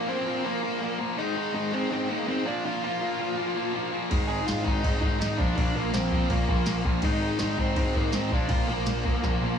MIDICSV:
0, 0, Header, 1, 5, 480
1, 0, Start_track
1, 0, Tempo, 365186
1, 1563, Time_signature, 4, 2, 24, 8
1, 12600, End_track
2, 0, Start_track
2, 0, Title_t, "Lead electric guitar"
2, 0, Program_c, 0, 29
2, 113, Note_on_c, 0, 72, 98
2, 119, Note_on_c, 0, 60, 83
2, 567, Note_off_c, 0, 60, 0
2, 596, Note_on_c, 0, 70, 97
2, 608, Note_on_c, 0, 58, 77
2, 612, Note_off_c, 0, 72, 0
2, 1269, Note_off_c, 0, 70, 0
2, 1275, Note_off_c, 0, 58, 0
2, 1557, Note_on_c, 0, 75, 107
2, 1562, Note_on_c, 0, 63, 76
2, 2008, Note_off_c, 0, 63, 0
2, 2014, Note_off_c, 0, 75, 0
2, 2028, Note_on_c, 0, 63, 73
2, 2033, Note_on_c, 0, 75, 96
2, 2258, Note_off_c, 0, 63, 0
2, 2283, Note_off_c, 0, 75, 0
2, 2285, Note_on_c, 0, 72, 91
2, 2292, Note_on_c, 0, 60, 77
2, 2507, Note_off_c, 0, 72, 0
2, 2510, Note_off_c, 0, 60, 0
2, 2529, Note_on_c, 0, 60, 77
2, 2535, Note_on_c, 0, 72, 82
2, 2749, Note_off_c, 0, 60, 0
2, 2761, Note_on_c, 0, 58, 72
2, 2769, Note_off_c, 0, 72, 0
2, 2769, Note_on_c, 0, 70, 71
2, 2986, Note_off_c, 0, 58, 0
2, 2996, Note_on_c, 0, 60, 66
2, 2999, Note_off_c, 0, 70, 0
2, 3004, Note_on_c, 0, 72, 77
2, 3222, Note_off_c, 0, 60, 0
2, 3230, Note_on_c, 0, 62, 75
2, 3240, Note_on_c, 0, 74, 103
2, 3250, Note_off_c, 0, 72, 0
2, 3459, Note_off_c, 0, 62, 0
2, 3464, Note_off_c, 0, 74, 0
2, 3486, Note_on_c, 0, 65, 77
2, 3491, Note_on_c, 0, 77, 89
2, 3708, Note_off_c, 0, 65, 0
2, 3722, Note_off_c, 0, 77, 0
2, 3725, Note_on_c, 0, 65, 71
2, 3738, Note_on_c, 0, 77, 88
2, 5110, Note_off_c, 0, 65, 0
2, 5116, Note_off_c, 0, 77, 0
2, 5621, Note_on_c, 0, 80, 105
2, 5636, Note_on_c, 0, 68, 86
2, 5861, Note_off_c, 0, 68, 0
2, 5861, Note_on_c, 0, 65, 88
2, 5867, Note_off_c, 0, 80, 0
2, 5867, Note_on_c, 0, 77, 98
2, 6086, Note_off_c, 0, 65, 0
2, 6091, Note_on_c, 0, 63, 91
2, 6101, Note_on_c, 0, 75, 109
2, 6119, Note_off_c, 0, 77, 0
2, 6551, Note_off_c, 0, 63, 0
2, 6556, Note_off_c, 0, 75, 0
2, 6581, Note_on_c, 0, 63, 75
2, 6596, Note_on_c, 0, 75, 97
2, 6813, Note_off_c, 0, 63, 0
2, 6822, Note_off_c, 0, 75, 0
2, 6834, Note_on_c, 0, 63, 80
2, 6841, Note_on_c, 0, 75, 86
2, 7061, Note_off_c, 0, 63, 0
2, 7067, Note_on_c, 0, 62, 84
2, 7071, Note_off_c, 0, 75, 0
2, 7076, Note_on_c, 0, 74, 109
2, 7294, Note_off_c, 0, 74, 0
2, 7296, Note_off_c, 0, 62, 0
2, 7310, Note_on_c, 0, 62, 82
2, 7314, Note_on_c, 0, 74, 90
2, 7539, Note_off_c, 0, 62, 0
2, 7562, Note_off_c, 0, 74, 0
2, 7562, Note_on_c, 0, 58, 72
2, 7570, Note_on_c, 0, 70, 72
2, 7785, Note_off_c, 0, 58, 0
2, 7786, Note_off_c, 0, 70, 0
2, 7802, Note_on_c, 0, 60, 85
2, 7802, Note_on_c, 0, 72, 89
2, 8248, Note_off_c, 0, 60, 0
2, 8280, Note_on_c, 0, 58, 75
2, 8292, Note_on_c, 0, 70, 83
2, 8293, Note_off_c, 0, 72, 0
2, 8951, Note_off_c, 0, 58, 0
2, 8954, Note_off_c, 0, 70, 0
2, 9249, Note_on_c, 0, 63, 77
2, 9258, Note_on_c, 0, 75, 80
2, 9692, Note_off_c, 0, 63, 0
2, 9701, Note_off_c, 0, 75, 0
2, 9721, Note_on_c, 0, 63, 76
2, 9721, Note_on_c, 0, 75, 93
2, 9941, Note_off_c, 0, 75, 0
2, 9944, Note_off_c, 0, 63, 0
2, 9987, Note_on_c, 0, 60, 73
2, 9993, Note_on_c, 0, 72, 96
2, 10197, Note_off_c, 0, 60, 0
2, 10200, Note_off_c, 0, 72, 0
2, 10218, Note_on_c, 0, 60, 72
2, 10237, Note_on_c, 0, 72, 104
2, 10432, Note_off_c, 0, 60, 0
2, 10466, Note_on_c, 0, 58, 67
2, 10473, Note_off_c, 0, 72, 0
2, 10473, Note_on_c, 0, 70, 83
2, 10677, Note_off_c, 0, 58, 0
2, 10693, Note_on_c, 0, 60, 74
2, 10698, Note_off_c, 0, 70, 0
2, 10704, Note_on_c, 0, 72, 82
2, 10910, Note_off_c, 0, 60, 0
2, 10938, Note_off_c, 0, 72, 0
2, 10946, Note_on_c, 0, 62, 74
2, 10953, Note_on_c, 0, 74, 91
2, 11157, Note_off_c, 0, 62, 0
2, 11158, Note_off_c, 0, 74, 0
2, 11163, Note_on_c, 0, 77, 93
2, 11169, Note_on_c, 0, 65, 65
2, 11388, Note_off_c, 0, 65, 0
2, 11390, Note_on_c, 0, 58, 64
2, 11398, Note_on_c, 0, 70, 71
2, 11408, Note_off_c, 0, 77, 0
2, 12600, Note_off_c, 0, 58, 0
2, 12600, Note_off_c, 0, 70, 0
2, 12600, End_track
3, 0, Start_track
3, 0, Title_t, "Distorted electric guitar"
3, 0, Program_c, 1, 30
3, 97, Note_on_c, 1, 46, 94
3, 106, Note_on_c, 1, 53, 91
3, 111, Note_on_c, 1, 58, 101
3, 329, Note_off_c, 1, 46, 0
3, 341, Note_off_c, 1, 53, 0
3, 343, Note_off_c, 1, 58, 0
3, 345, Note_on_c, 1, 46, 82
3, 356, Note_on_c, 1, 53, 79
3, 359, Note_on_c, 1, 58, 88
3, 560, Note_off_c, 1, 46, 0
3, 570, Note_off_c, 1, 58, 0
3, 572, Note_off_c, 1, 53, 0
3, 575, Note_on_c, 1, 46, 84
3, 585, Note_on_c, 1, 58, 96
3, 588, Note_on_c, 1, 53, 96
3, 796, Note_off_c, 1, 46, 0
3, 804, Note_off_c, 1, 53, 0
3, 811, Note_off_c, 1, 58, 0
3, 812, Note_on_c, 1, 46, 88
3, 820, Note_on_c, 1, 53, 90
3, 827, Note_on_c, 1, 58, 96
3, 1042, Note_off_c, 1, 46, 0
3, 1052, Note_off_c, 1, 53, 0
3, 1053, Note_off_c, 1, 58, 0
3, 1058, Note_on_c, 1, 46, 112
3, 1067, Note_on_c, 1, 53, 107
3, 1069, Note_on_c, 1, 58, 121
3, 1283, Note_off_c, 1, 46, 0
3, 1297, Note_off_c, 1, 53, 0
3, 1297, Note_off_c, 1, 58, 0
3, 1299, Note_on_c, 1, 46, 80
3, 1312, Note_on_c, 1, 58, 90
3, 1313, Note_on_c, 1, 53, 96
3, 1526, Note_off_c, 1, 46, 0
3, 1532, Note_on_c, 1, 44, 86
3, 1538, Note_off_c, 1, 53, 0
3, 1543, Note_off_c, 1, 58, 0
3, 1544, Note_on_c, 1, 51, 87
3, 1550, Note_on_c, 1, 56, 94
3, 1767, Note_off_c, 1, 44, 0
3, 1772, Note_off_c, 1, 51, 0
3, 1782, Note_off_c, 1, 56, 0
3, 1783, Note_on_c, 1, 44, 91
3, 1788, Note_on_c, 1, 51, 100
3, 1798, Note_on_c, 1, 56, 101
3, 2014, Note_off_c, 1, 44, 0
3, 2015, Note_off_c, 1, 51, 0
3, 2021, Note_off_c, 1, 56, 0
3, 2029, Note_on_c, 1, 44, 106
3, 2031, Note_on_c, 1, 51, 96
3, 2037, Note_on_c, 1, 56, 98
3, 2249, Note_off_c, 1, 44, 0
3, 2256, Note_off_c, 1, 51, 0
3, 2260, Note_off_c, 1, 56, 0
3, 2265, Note_on_c, 1, 44, 88
3, 2272, Note_on_c, 1, 51, 82
3, 2275, Note_on_c, 1, 56, 106
3, 2482, Note_off_c, 1, 44, 0
3, 2490, Note_off_c, 1, 51, 0
3, 2494, Note_off_c, 1, 56, 0
3, 2497, Note_on_c, 1, 44, 105
3, 2506, Note_on_c, 1, 51, 99
3, 2510, Note_on_c, 1, 56, 98
3, 2729, Note_off_c, 1, 44, 0
3, 2740, Note_off_c, 1, 51, 0
3, 2742, Note_off_c, 1, 56, 0
3, 2745, Note_on_c, 1, 44, 83
3, 2756, Note_on_c, 1, 51, 79
3, 2758, Note_on_c, 1, 56, 98
3, 2964, Note_off_c, 1, 44, 0
3, 2977, Note_off_c, 1, 51, 0
3, 2980, Note_off_c, 1, 56, 0
3, 2980, Note_on_c, 1, 44, 108
3, 2993, Note_on_c, 1, 51, 109
3, 2996, Note_on_c, 1, 56, 127
3, 3215, Note_off_c, 1, 44, 0
3, 3221, Note_on_c, 1, 46, 93
3, 3222, Note_off_c, 1, 51, 0
3, 3224, Note_off_c, 1, 56, 0
3, 3227, Note_on_c, 1, 53, 96
3, 3233, Note_on_c, 1, 58, 102
3, 3464, Note_off_c, 1, 46, 0
3, 3467, Note_off_c, 1, 53, 0
3, 3471, Note_off_c, 1, 58, 0
3, 3480, Note_on_c, 1, 46, 89
3, 3483, Note_on_c, 1, 53, 94
3, 3487, Note_on_c, 1, 58, 106
3, 3700, Note_off_c, 1, 46, 0
3, 3707, Note_off_c, 1, 53, 0
3, 3714, Note_off_c, 1, 58, 0
3, 3715, Note_on_c, 1, 46, 90
3, 3723, Note_on_c, 1, 53, 83
3, 3730, Note_on_c, 1, 58, 109
3, 3939, Note_off_c, 1, 46, 0
3, 3939, Note_off_c, 1, 53, 0
3, 3948, Note_off_c, 1, 58, 0
3, 3954, Note_on_c, 1, 53, 91
3, 3955, Note_on_c, 1, 46, 80
3, 3964, Note_on_c, 1, 58, 91
3, 4176, Note_off_c, 1, 46, 0
3, 4186, Note_off_c, 1, 53, 0
3, 4189, Note_off_c, 1, 58, 0
3, 4192, Note_on_c, 1, 46, 88
3, 4201, Note_on_c, 1, 53, 89
3, 4205, Note_on_c, 1, 58, 106
3, 4414, Note_off_c, 1, 46, 0
3, 4425, Note_off_c, 1, 53, 0
3, 4430, Note_on_c, 1, 46, 85
3, 4431, Note_off_c, 1, 58, 0
3, 4440, Note_on_c, 1, 53, 95
3, 4447, Note_on_c, 1, 58, 91
3, 4657, Note_off_c, 1, 46, 0
3, 4662, Note_off_c, 1, 53, 0
3, 4672, Note_off_c, 1, 58, 0
3, 4673, Note_on_c, 1, 46, 86
3, 4677, Note_on_c, 1, 53, 80
3, 4688, Note_on_c, 1, 58, 99
3, 4900, Note_off_c, 1, 46, 0
3, 4906, Note_off_c, 1, 53, 0
3, 4908, Note_off_c, 1, 58, 0
3, 4915, Note_on_c, 1, 46, 103
3, 4922, Note_on_c, 1, 53, 122
3, 4923, Note_on_c, 1, 58, 117
3, 5136, Note_off_c, 1, 46, 0
3, 5148, Note_off_c, 1, 53, 0
3, 5148, Note_off_c, 1, 58, 0
3, 5152, Note_on_c, 1, 46, 81
3, 5163, Note_on_c, 1, 53, 87
3, 5163, Note_on_c, 1, 58, 94
3, 5382, Note_off_c, 1, 46, 0
3, 5388, Note_off_c, 1, 53, 0
3, 5388, Note_off_c, 1, 58, 0
3, 5388, Note_on_c, 1, 44, 89
3, 5398, Note_on_c, 1, 56, 99
3, 5399, Note_on_c, 1, 51, 96
3, 5621, Note_off_c, 1, 44, 0
3, 5627, Note_off_c, 1, 51, 0
3, 5636, Note_on_c, 1, 44, 89
3, 5638, Note_off_c, 1, 56, 0
3, 5643, Note_on_c, 1, 51, 84
3, 5654, Note_on_c, 1, 56, 105
3, 5857, Note_off_c, 1, 44, 0
3, 5861, Note_off_c, 1, 51, 0
3, 5866, Note_off_c, 1, 56, 0
3, 5872, Note_on_c, 1, 44, 89
3, 5877, Note_on_c, 1, 51, 90
3, 5881, Note_on_c, 1, 56, 105
3, 6099, Note_off_c, 1, 44, 0
3, 6103, Note_off_c, 1, 51, 0
3, 6107, Note_off_c, 1, 56, 0
3, 6115, Note_on_c, 1, 44, 80
3, 6119, Note_on_c, 1, 51, 89
3, 6123, Note_on_c, 1, 56, 83
3, 6329, Note_off_c, 1, 44, 0
3, 6342, Note_off_c, 1, 51, 0
3, 6345, Note_on_c, 1, 44, 94
3, 6351, Note_off_c, 1, 56, 0
3, 6358, Note_on_c, 1, 51, 90
3, 6367, Note_on_c, 1, 56, 96
3, 6575, Note_off_c, 1, 44, 0
3, 6585, Note_off_c, 1, 51, 0
3, 6587, Note_off_c, 1, 56, 0
3, 6591, Note_on_c, 1, 44, 82
3, 6601, Note_on_c, 1, 51, 84
3, 6602, Note_on_c, 1, 56, 93
3, 6813, Note_off_c, 1, 44, 0
3, 6815, Note_off_c, 1, 51, 0
3, 6824, Note_off_c, 1, 56, 0
3, 6828, Note_on_c, 1, 44, 100
3, 6831, Note_on_c, 1, 51, 110
3, 6840, Note_on_c, 1, 56, 127
3, 7060, Note_off_c, 1, 44, 0
3, 7061, Note_off_c, 1, 51, 0
3, 7065, Note_off_c, 1, 56, 0
3, 7067, Note_on_c, 1, 46, 89
3, 7074, Note_on_c, 1, 58, 99
3, 7076, Note_on_c, 1, 53, 105
3, 7287, Note_off_c, 1, 46, 0
3, 7299, Note_off_c, 1, 53, 0
3, 7302, Note_on_c, 1, 46, 89
3, 7303, Note_off_c, 1, 58, 0
3, 7314, Note_on_c, 1, 53, 91
3, 7319, Note_on_c, 1, 58, 100
3, 7541, Note_off_c, 1, 46, 0
3, 7554, Note_off_c, 1, 53, 0
3, 7557, Note_on_c, 1, 46, 90
3, 7558, Note_off_c, 1, 58, 0
3, 7569, Note_on_c, 1, 53, 96
3, 7574, Note_on_c, 1, 58, 90
3, 7790, Note_off_c, 1, 46, 0
3, 7797, Note_off_c, 1, 53, 0
3, 7806, Note_off_c, 1, 58, 0
3, 7806, Note_on_c, 1, 46, 97
3, 7813, Note_on_c, 1, 53, 95
3, 7822, Note_on_c, 1, 58, 111
3, 8010, Note_off_c, 1, 46, 0
3, 8024, Note_off_c, 1, 53, 0
3, 8025, Note_off_c, 1, 58, 0
3, 8026, Note_on_c, 1, 46, 83
3, 8040, Note_on_c, 1, 53, 89
3, 8041, Note_on_c, 1, 58, 106
3, 8251, Note_off_c, 1, 46, 0
3, 8262, Note_off_c, 1, 53, 0
3, 8267, Note_on_c, 1, 46, 80
3, 8271, Note_off_c, 1, 58, 0
3, 8277, Note_on_c, 1, 53, 89
3, 8287, Note_on_c, 1, 58, 107
3, 8492, Note_off_c, 1, 46, 0
3, 8506, Note_off_c, 1, 53, 0
3, 8506, Note_off_c, 1, 58, 0
3, 8507, Note_on_c, 1, 46, 87
3, 8522, Note_on_c, 1, 53, 100
3, 8522, Note_on_c, 1, 58, 94
3, 8732, Note_off_c, 1, 46, 0
3, 8738, Note_off_c, 1, 53, 0
3, 8747, Note_off_c, 1, 58, 0
3, 8747, Note_on_c, 1, 46, 104
3, 8754, Note_on_c, 1, 53, 124
3, 8763, Note_on_c, 1, 58, 123
3, 8976, Note_off_c, 1, 46, 0
3, 8984, Note_off_c, 1, 53, 0
3, 8992, Note_on_c, 1, 46, 73
3, 8994, Note_off_c, 1, 58, 0
3, 8999, Note_on_c, 1, 53, 102
3, 9010, Note_on_c, 1, 58, 92
3, 9221, Note_off_c, 1, 46, 0
3, 9225, Note_off_c, 1, 53, 0
3, 9230, Note_off_c, 1, 58, 0
3, 9238, Note_on_c, 1, 44, 83
3, 9241, Note_on_c, 1, 51, 101
3, 9246, Note_on_c, 1, 56, 108
3, 9455, Note_off_c, 1, 44, 0
3, 9470, Note_off_c, 1, 51, 0
3, 9471, Note_on_c, 1, 44, 94
3, 9476, Note_off_c, 1, 56, 0
3, 9486, Note_on_c, 1, 51, 91
3, 9492, Note_on_c, 1, 56, 116
3, 9691, Note_off_c, 1, 44, 0
3, 9702, Note_off_c, 1, 51, 0
3, 9703, Note_off_c, 1, 56, 0
3, 9707, Note_on_c, 1, 44, 90
3, 9717, Note_on_c, 1, 51, 98
3, 9719, Note_on_c, 1, 56, 106
3, 9941, Note_off_c, 1, 44, 0
3, 9947, Note_off_c, 1, 51, 0
3, 9956, Note_off_c, 1, 56, 0
3, 9957, Note_on_c, 1, 44, 92
3, 9963, Note_on_c, 1, 51, 89
3, 9972, Note_on_c, 1, 56, 89
3, 10186, Note_off_c, 1, 44, 0
3, 10194, Note_off_c, 1, 51, 0
3, 10199, Note_off_c, 1, 56, 0
3, 10202, Note_on_c, 1, 44, 93
3, 10210, Note_on_c, 1, 51, 99
3, 10214, Note_on_c, 1, 56, 99
3, 10422, Note_off_c, 1, 44, 0
3, 10429, Note_off_c, 1, 51, 0
3, 10437, Note_off_c, 1, 56, 0
3, 10437, Note_on_c, 1, 44, 82
3, 10445, Note_on_c, 1, 51, 96
3, 10453, Note_on_c, 1, 56, 101
3, 10655, Note_off_c, 1, 44, 0
3, 10670, Note_on_c, 1, 44, 118
3, 10671, Note_off_c, 1, 51, 0
3, 10676, Note_off_c, 1, 56, 0
3, 10687, Note_on_c, 1, 51, 112
3, 10692, Note_on_c, 1, 56, 127
3, 10900, Note_off_c, 1, 44, 0
3, 10909, Note_off_c, 1, 51, 0
3, 10911, Note_off_c, 1, 56, 0
3, 10931, Note_on_c, 1, 46, 91
3, 10936, Note_on_c, 1, 53, 101
3, 10947, Note_on_c, 1, 58, 109
3, 11147, Note_off_c, 1, 46, 0
3, 11159, Note_off_c, 1, 53, 0
3, 11163, Note_on_c, 1, 46, 97
3, 11165, Note_off_c, 1, 58, 0
3, 11175, Note_on_c, 1, 53, 94
3, 11181, Note_on_c, 1, 58, 106
3, 11388, Note_off_c, 1, 46, 0
3, 11397, Note_off_c, 1, 53, 0
3, 11403, Note_on_c, 1, 46, 85
3, 11406, Note_off_c, 1, 58, 0
3, 11413, Note_on_c, 1, 53, 99
3, 11422, Note_on_c, 1, 58, 102
3, 11636, Note_off_c, 1, 46, 0
3, 11643, Note_off_c, 1, 53, 0
3, 11645, Note_off_c, 1, 58, 0
3, 11652, Note_on_c, 1, 46, 92
3, 11659, Note_on_c, 1, 53, 92
3, 11661, Note_on_c, 1, 58, 97
3, 11869, Note_off_c, 1, 46, 0
3, 11877, Note_off_c, 1, 53, 0
3, 11880, Note_off_c, 1, 58, 0
3, 11885, Note_on_c, 1, 46, 78
3, 11893, Note_on_c, 1, 53, 95
3, 11896, Note_on_c, 1, 58, 101
3, 12108, Note_off_c, 1, 46, 0
3, 12113, Note_off_c, 1, 53, 0
3, 12115, Note_off_c, 1, 58, 0
3, 12124, Note_on_c, 1, 46, 81
3, 12128, Note_on_c, 1, 53, 88
3, 12131, Note_on_c, 1, 58, 89
3, 12357, Note_off_c, 1, 46, 0
3, 12359, Note_off_c, 1, 53, 0
3, 12367, Note_off_c, 1, 58, 0
3, 12373, Note_on_c, 1, 46, 81
3, 12374, Note_on_c, 1, 53, 104
3, 12382, Note_on_c, 1, 58, 87
3, 12591, Note_off_c, 1, 46, 0
3, 12600, Note_off_c, 1, 53, 0
3, 12600, Note_off_c, 1, 58, 0
3, 12600, End_track
4, 0, Start_track
4, 0, Title_t, "Picked electric bass"
4, 0, Program_c, 2, 34
4, 5407, Note_on_c, 2, 32, 102
4, 5773, Note_off_c, 2, 32, 0
4, 5889, Note_on_c, 2, 32, 99
4, 6070, Note_off_c, 2, 32, 0
4, 6129, Note_on_c, 2, 32, 91
4, 6310, Note_off_c, 2, 32, 0
4, 6363, Note_on_c, 2, 32, 106
4, 6546, Note_off_c, 2, 32, 0
4, 6603, Note_on_c, 2, 32, 100
4, 6786, Note_off_c, 2, 32, 0
4, 6843, Note_on_c, 2, 32, 88
4, 7026, Note_off_c, 2, 32, 0
4, 7090, Note_on_c, 2, 34, 95
4, 7270, Note_off_c, 2, 34, 0
4, 7324, Note_on_c, 2, 34, 107
4, 7507, Note_off_c, 2, 34, 0
4, 7566, Note_on_c, 2, 34, 98
4, 7748, Note_off_c, 2, 34, 0
4, 7811, Note_on_c, 2, 34, 94
4, 8175, Note_off_c, 2, 34, 0
4, 8279, Note_on_c, 2, 34, 105
4, 8463, Note_off_c, 2, 34, 0
4, 8520, Note_on_c, 2, 34, 103
4, 8704, Note_off_c, 2, 34, 0
4, 8761, Note_on_c, 2, 34, 86
4, 8945, Note_off_c, 2, 34, 0
4, 9006, Note_on_c, 2, 34, 101
4, 9188, Note_off_c, 2, 34, 0
4, 9230, Note_on_c, 2, 32, 112
4, 9602, Note_off_c, 2, 32, 0
4, 9733, Note_on_c, 2, 32, 97
4, 9912, Note_off_c, 2, 32, 0
4, 9961, Note_on_c, 2, 32, 104
4, 10145, Note_off_c, 2, 32, 0
4, 10204, Note_on_c, 2, 32, 97
4, 10387, Note_off_c, 2, 32, 0
4, 10449, Note_on_c, 2, 32, 101
4, 10629, Note_off_c, 2, 32, 0
4, 10680, Note_on_c, 2, 32, 83
4, 10926, Note_off_c, 2, 32, 0
4, 10926, Note_on_c, 2, 34, 95
4, 11108, Note_off_c, 2, 34, 0
4, 11164, Note_on_c, 2, 34, 111
4, 11347, Note_off_c, 2, 34, 0
4, 11404, Note_on_c, 2, 34, 99
4, 11587, Note_off_c, 2, 34, 0
4, 11648, Note_on_c, 2, 34, 98
4, 12014, Note_off_c, 2, 34, 0
4, 12136, Note_on_c, 2, 34, 117
4, 12315, Note_off_c, 2, 34, 0
4, 12368, Note_on_c, 2, 34, 94
4, 12550, Note_off_c, 2, 34, 0
4, 12600, End_track
5, 0, Start_track
5, 0, Title_t, "Drums"
5, 5402, Note_on_c, 9, 49, 66
5, 5404, Note_on_c, 9, 36, 113
5, 5534, Note_off_c, 9, 49, 0
5, 5535, Note_off_c, 9, 36, 0
5, 5886, Note_on_c, 9, 49, 63
5, 5894, Note_on_c, 9, 38, 99
5, 6017, Note_off_c, 9, 49, 0
5, 6025, Note_off_c, 9, 38, 0
5, 6126, Note_on_c, 9, 36, 86
5, 6257, Note_off_c, 9, 36, 0
5, 6363, Note_on_c, 9, 36, 110
5, 6366, Note_on_c, 9, 49, 62
5, 6494, Note_off_c, 9, 36, 0
5, 6497, Note_off_c, 9, 49, 0
5, 6604, Note_on_c, 9, 36, 100
5, 6736, Note_off_c, 9, 36, 0
5, 6852, Note_on_c, 9, 49, 55
5, 6860, Note_on_c, 9, 38, 105
5, 6983, Note_off_c, 9, 49, 0
5, 6991, Note_off_c, 9, 38, 0
5, 7084, Note_on_c, 9, 36, 92
5, 7215, Note_off_c, 9, 36, 0
5, 7323, Note_on_c, 9, 36, 111
5, 7329, Note_on_c, 9, 49, 61
5, 7455, Note_off_c, 9, 36, 0
5, 7461, Note_off_c, 9, 49, 0
5, 7802, Note_on_c, 9, 49, 59
5, 7810, Note_on_c, 9, 38, 121
5, 7934, Note_off_c, 9, 49, 0
5, 7942, Note_off_c, 9, 38, 0
5, 8042, Note_on_c, 9, 36, 87
5, 8174, Note_off_c, 9, 36, 0
5, 8279, Note_on_c, 9, 36, 106
5, 8279, Note_on_c, 9, 49, 60
5, 8410, Note_off_c, 9, 36, 0
5, 8410, Note_off_c, 9, 49, 0
5, 8519, Note_on_c, 9, 36, 102
5, 8651, Note_off_c, 9, 36, 0
5, 8752, Note_on_c, 9, 49, 73
5, 8759, Note_on_c, 9, 38, 114
5, 8883, Note_off_c, 9, 49, 0
5, 8891, Note_off_c, 9, 38, 0
5, 8999, Note_on_c, 9, 36, 96
5, 9130, Note_off_c, 9, 36, 0
5, 9227, Note_on_c, 9, 49, 76
5, 9236, Note_on_c, 9, 36, 119
5, 9358, Note_off_c, 9, 49, 0
5, 9368, Note_off_c, 9, 36, 0
5, 9711, Note_on_c, 9, 49, 63
5, 9719, Note_on_c, 9, 38, 109
5, 9842, Note_off_c, 9, 49, 0
5, 9850, Note_off_c, 9, 38, 0
5, 9964, Note_on_c, 9, 36, 82
5, 10096, Note_off_c, 9, 36, 0
5, 10205, Note_on_c, 9, 49, 64
5, 10206, Note_on_c, 9, 36, 116
5, 10336, Note_off_c, 9, 49, 0
5, 10337, Note_off_c, 9, 36, 0
5, 10447, Note_on_c, 9, 36, 98
5, 10579, Note_off_c, 9, 36, 0
5, 10678, Note_on_c, 9, 49, 54
5, 10686, Note_on_c, 9, 38, 107
5, 10809, Note_off_c, 9, 49, 0
5, 10817, Note_off_c, 9, 38, 0
5, 10926, Note_on_c, 9, 36, 99
5, 11058, Note_off_c, 9, 36, 0
5, 11157, Note_on_c, 9, 49, 69
5, 11164, Note_on_c, 9, 36, 118
5, 11289, Note_off_c, 9, 49, 0
5, 11296, Note_off_c, 9, 36, 0
5, 11648, Note_on_c, 9, 49, 60
5, 11655, Note_on_c, 9, 38, 117
5, 11779, Note_off_c, 9, 49, 0
5, 11787, Note_off_c, 9, 38, 0
5, 11893, Note_on_c, 9, 36, 89
5, 12024, Note_off_c, 9, 36, 0
5, 12133, Note_on_c, 9, 36, 109
5, 12140, Note_on_c, 9, 38, 62
5, 12264, Note_off_c, 9, 36, 0
5, 12272, Note_off_c, 9, 38, 0
5, 12600, End_track
0, 0, End_of_file